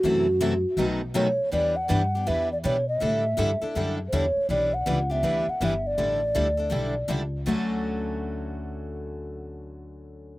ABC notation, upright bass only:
X:1
M:4/4
L:1/8
Q:"Swing" 1/4=162
K:D
V:1 name="Upright bass" clef=bass
F,,4 B,,,4 | E,,2 G,,2 E,,2 B,,2 | A,,2 G,, z F,,2 E,, z | B,,,2 C,,2 D,, z G,,,2 |
A,,,2 D,,2 B,,,2 C,,2 | D,,8- | D,,8 |]